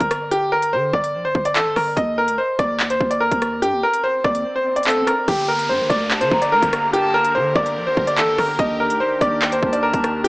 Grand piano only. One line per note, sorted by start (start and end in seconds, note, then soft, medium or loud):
0.00 0.29 A#4 medium
0.31 0.51 G4 medium
0.52 0.71 A#4 medium
0.73 0.92 C5 medium
0.94 1.23 D5 medium
1.25 1.44 C5 medium
1.45 1.55 D5 medium
1.55 1.75 A4 loud
1.76 1.95 A#4 medium
1.97 2.16 D#5 medium
2.18 2.37 A#4 medium
2.38 2.57 C5 medium
2.59 2.88 D5 medium
2.90 3.09 C5 medium
3.11 3.20 D5 medium
3.20 3.60 A#4 medium
3.62 3.81 G4 loud
3.83 4.02 A#4 medium
4.04 4.23 C5 medium
4.24 4.54 D5 medium
4.56 4.75 C5 medium
4.76 4.86 D5 medium
4.86 5.06 A4 medium
5.07 5.26 A#4 medium
5.28 5.47 G4 medium
5.48 5.68 A#4 medium
5.69 5.88 C5 medium
5.90 6.19 D5 medium
6.21 6.40 C5 medium
6.42 6.51 D5 medium
6.52 6.91 A#4 medium
6.93 7.12 G4 loud
7.14 7.33 A#4 loud
7.35 7.54 C5 medium
7.56 7.85 D5 loud
7.87 8.06 C5 medium
8.07 8.17 D5 medium
8.18 8.37 A4 loud
8.38 8.57 A#4 medium
8.59 8.78 D#5 medium
8.80 8.99 A#4 medium
9.00 9.19 C5 medium
9.21 9.50 D5 medium
9.53 9.71 C5 medium
9.73 9.82 D5 medium
9.83 10.22 A#4 medium
10.24 10.28 G4 medium